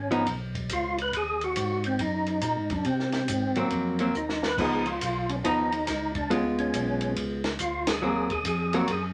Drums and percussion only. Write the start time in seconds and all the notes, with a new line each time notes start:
0.11 ride
0.26 kick, ride
0.55 kick, ride
0.69 kick, hi-hat pedal, ride
0.98 ride
1.13 kick, ride
1.41 ride
1.56 kick, hi-hat pedal, ride
1.84 ride
1.99 kick, ride
2.26 ride
2.41 kick, hi-hat pedal, ride
2.70 kick, ride
2.85 kick, ride
2.99 snare
3.12 snare, ride
3.28 kick, hi-hat pedal, ride
3.55 ride
3.70 kick, ride
3.99 ride
4.15 hi-hat pedal
4.29 snare
4.43 snare
4.58 kick, crash
4.86 ride
5.01 kick, hi-hat pedal, ride
5.29 ride
5.44 kick, ride
5.72 ride
5.87 kick, snare, hi-hat pedal, ride
6.15 kick, ride
6.30 kick, ride
6.58 ride
6.73 kick, hi-hat pedal, ride
7.01 ride
7.16 kick, ride
7.44 snare, ride
7.59 kick, hi-hat pedal, ride
7.87 snare, ride
8.30 kick, ride
8.45 kick, hi-hat pedal, ride
8.73 ride
8.88 kick, ride